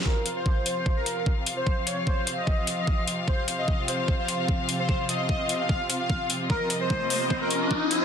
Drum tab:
HH |-x-x-x-x|-x-x-x-x|-x-x-x-x|-x-x-x-x|
BD |o-o-o-o-|o-o-o-o-|o-o-o-o-|o-o-o-o-|

HH |-x-o-x-x|
BD |o-o-o-o-|